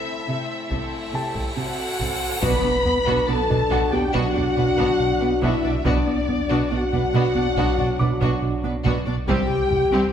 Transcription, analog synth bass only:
2.43 B2
2.64 B3
2.86 B3
3.07 B2
3.29 B3
3.50 B2
3.71 B2
3.93 B3
4.15 B2
4.36 B2
4.57 B2
4.79 B2
5.00 B2
5.22 B3
5.43 B2
5.64 B2
5.85 B2
6.07 B3
6.29 B3
6.51 B2
6.72 B3
6.93 B2
7.14 B2
7.35 B3
7.57 B2
7.78 B2
8.00 B2
8.21 B2
8.43 B2
8.64 B3
8.85 B2
9.07 B2
9.27 C2
9.49 C3
9.71 C3
9.93 C2

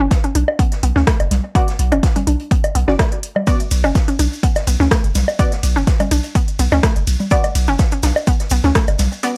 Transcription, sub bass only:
0.00 F#1
0.35 B1
0.83 B1
0.96 D2
1.20 F#1
1.31 B1
1.79 B1
1.92 F#1
2.27 B1
2.75 B1
2.88 F#1
3.71 B1
3.84 F#1
4.19 B1
4.67 B1
4.80 D2
5.04 F#1
5.15 B1
5.63 B1
5.76 F#1
6.11 B1
6.59 B1
6.72 D2
6.96 F#1
7.07 B1
7.55 B1
7.68 F#1
8.03 B1
8.51 B1
8.64 D2
8.88 F#1
8.99 B1

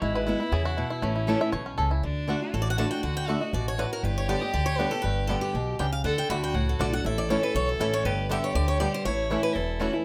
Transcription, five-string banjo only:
Already playing: C#5
0.02 E4
0.15 B4
0.27 E4
0.40 E4
0.53 G#4
0.65 F#4
0.77 E4
0.90 E4
1.02 A3
1.16 E4
1.28 A4
1.41 E5
1.52 C#5
1.66 C#4
1.78 A4
1.91 E4
2.29 A3 D4 F#4
2.79 A3 D4 F#4
3.29 A3 D4 F#4
3.79 A3 D4 F#4
4.29 B3 D4 G4
4.79 B3 D4 G4
5.29 B3 D4 G4
5.79 B3 D4 G4
6.30 A3 D4 F#4
6.80 A3 D4 F#4
7.30 A3 C#4 E4
7.80 A3 C#4 E4
8.31 B3 D4 G4
8.80 B3 D4 G4
9.31 A3 C#4 E4
9.81 A3 C#4 E4

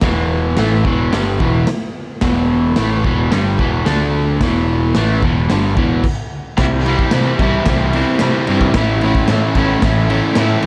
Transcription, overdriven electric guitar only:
0.03 E2 B2 E3
0.57 A2 E3 A3
0.84 E2 B2 E3
1.12 G2 D3 G3
1.39 E2 B2 E3
1.68 muted overdriven electric guitar stroke
2.23 E2 B2 E3
2.77 A2 E3 A3
3.05 E2 B2 E3
3.31 G2 D3 G3
3.59 E2 B2 E3
3.85 D3 A3 D4
4.41 E2 B2 E3
4.96 A2 E3 A3
5.23 E2 B2 E3
5.50 G2 D3 G3
5.76 E2 B2 E3
6.57 C3 E3 G3 C4 E4
6.85 C3 E3 G3 C4
6.89 E4
7.12 C3 E3 G3 C4 E4
7.40 C3 E3 G3 C4 E4
7.67 C3 E3 G3 C4 E4
7.94 C3 E3 G3 C4 E4
8.20 C3 E3 G3 C4 E4
8.48 C3 E3 G3 C4 E4
8.75 A2 E3 A3 C#4 E4
9.02 A2 E3 A3 C#4 E4
9.29 A2 E3 A3 C#4 E4
9.55 A2 E3 A3 C#4 E4
9.82 A2 E3 A3 C#4 E4
10.09 A2 E3 A3 C#4 E4
10.37 A2 E3 A3 C#4 E4
10.63 A2

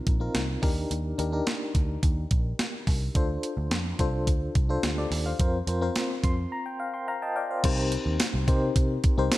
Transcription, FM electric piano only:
Already playing: C4 D#4 F4 A#4
0.20 C4 D#4 F4 A#4
0.62 D4 D#4 G4 A#4
1.18 D4 D#4 G4 A#4
1.32 D4 D#4 G4 A#4
3.15 D4 F4 A4 C5
3.99 D4 F4 A4 C5
4.69 D4 F4 A4 C5
4.85 G4
4.98 A4 D5
5.26 C5 F5
5.39 C4 F4 A#4 C5
5.67 C4 F4 A#4 C5
5.81 C4 F4 A#4 C5
6.24 C6
6.52 A#5
6.66 G5
6.80 F5
6.94 G5 C6
7.08 F5 A#5
7.22 D#5 G5 A5
7.36 D5 F5 G5
7.50 C5 F5
7.64 C4 D#4 G4 A#4 C5
8.47 C4 D#4 G4 A#4 C5
9.18 C4 D#4 G4 A#4 C5

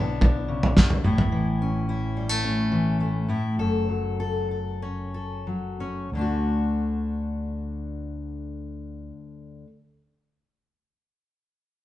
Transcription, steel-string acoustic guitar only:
Already playing: D3 B3 D4 E4
0.22 D4
0.48 C#3
0.77 B2
1.04 A2 E4
1.32 E3
1.62 C#4
1.89 E4
2.17 G3
2.29 A3
2.44 C#4
2.72 E3
3.00 A3
3.28 A2 E4
3.59 F#2 A4
3.89 F#3
4.20 A4
4.51 A4
4.82 C#4
5.14 A4
5.47 F#3
5.80 C#4
6.13 D2 D3 A3
6.19 D4 F#4

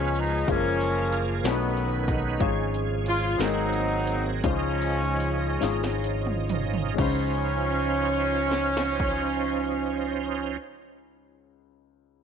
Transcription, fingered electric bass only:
Already playing: C#2
0.48 F#1
1.44 B1
2.40 G#1
3.39 G#1
4.44 C#2
5.62 G#1
6.98 C#2

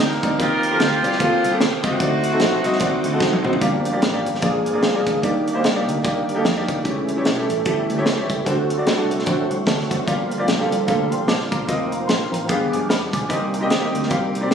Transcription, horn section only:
Already playing: A#4
0.00 A#3 D#4 G4
0.39 F4 G4 A#4
0.80 A#3 C4 G4
1.19 A#3 C4 F4
1.83 A3 C4 F#4

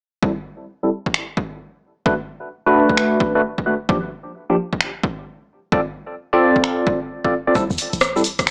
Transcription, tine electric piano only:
0.22 G3 C4 E4 A4
0.83 G3 C4 E4 A4
2.06 A3 D4 F#4 B4
2.66 A3 D4 F#4 B4
3.35 A3 D4 F#4 B4
3.66 A3 D4 F#4 B4
3.89 F3 A#3 D4 G4
4.50 F3 A#3 D4 G4
5.72 C4 F4 A4 D5
6.33 C4 F4 A4 D5
7.24 C4 F4 A4 D5
7.47 C4 F4 A4 D5
7.55 G3 C4 E4 A4
8.16 G3 C4 E4 A4

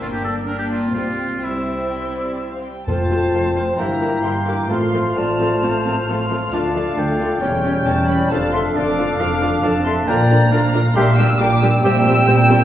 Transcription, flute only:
2.87 C5
3.77 E5
4.22 E5
4.46 F5
4.69 F5
5.17 A5
6.54 A4
7.43 C#5
7.87 C#5
8.09 D5
8.33 D5
8.54 E5
8.76 F5
9.85 E5
10.07 D5
10.95 E5
11.16 G5
11.39 G5
11.61 G5
11.83 G5

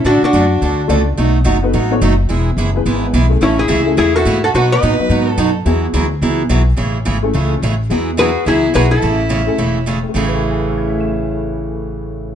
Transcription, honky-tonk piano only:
0.88 A3 D4 F#4 A4 D5
1.62 B3 D#4 F#4 A4 B4
1.90 B3 D#4 F#4 A4 C#5
2.74 G#3 B3 E4 G#4 B4
3.29 A3 C#4 E4 G#4 A4
3.86 A3 C#4 E4 G#4 A4
4.99 F#3 B3 D#4 F#4 B4
5.65 G#3 B3 E4 F#4 G#4
7.23 A3 C#4 E4 G#4 A4
7.89 G#3 B3 E4 F#4 G#4
8.18 G#3 B3 E4 F#4 G#4
9.47 A3 C#4 E4 G#4 A4
10.03 A2
10.09 A3
10.15 C#4
10.22 G#4
10.28 B4
10.44 E5
10.51 G#5
10.59 B5
10.68 E6
10.78 G#6
10.89 B6
11.00 E7

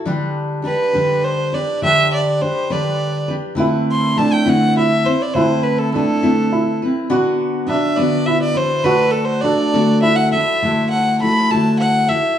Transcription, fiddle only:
0.66 B4
1.24 C5
1.54 D5
1.84 E5
2.13 D5
2.42 C5
2.72 D5
3.91 C6
4.18 A5
4.33 G5
4.49 F#5
4.78 E5
5.06 C5
5.22 D5
5.34 C5
5.63 B4
5.79 A4
5.94 A4
7.69 E5
7.96 D5
8.26 E5
8.42 D5
8.57 C5
8.84 B4
9.11 A4
9.25 C5
9.41 D5
10.02 E5
10.16 F#5
10.32 E5
10.90 F#5
11.22 B5
11.51 A5
11.79 F#5
12.09 E5

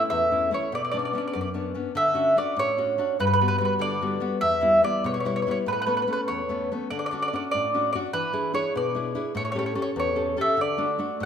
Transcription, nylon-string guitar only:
Already playing: A3 C#4 E4
0.11 E2
0.31 A3 C#4 E4
0.51 A3 C#4 E4
0.72 B2
0.94 B3 C#4 D4
1.13 B3 C#4 D4
1.35 F#2
1.54 B3 C#4 D4
1.75 B3 C#4 D4
1.95 D3
2.14 C#4 D4 F#4
2.36 C#4 D4 F#4
2.56 A2
2.78 C#4 D4 F#4
2.98 C#4 D4 F#4
3.20 G2
3.41 G3 B3 F#4
3.61 G3 B3 F#4
3.79 D3
4.02 G3 B3 F#4
4.20 G3 B3 F#4
4.41 E2
4.61 G3 B3 E4
4.82 G3 B3 E4
5.04 B2
5.25 G3 B3 E4
5.47 G3 B3 E4
5.66 A2
5.86 A3 B3 C#4
6.07 A3 B3 C#4
6.29 E2
6.49 A3 B3 C#4
6.72 A3 B3 C#4
6.91 D3
7.12 C#4 D4 F#4
7.33 C#4 D4 F#4
7.54 A2
7.74 C#4 D4 F#4
7.95 C#4 D4 F#4
8.14 E3
8.33 D4 E4 G#4
8.53 D4 E4 G#4
8.75 B2
8.95 D4 E4 G#4
9.15 D4 E4 G#4
9.35 A2
9.55 C#4 G4 A4
9.75 C#4 G4 A4
9.96 E2
10.16 C#4 G4 A4
10.37 C#4 G4 A4
10.57 D3
10.78 A3 D4 F#4
10.99 A3 D4 F#4
11.20 A2

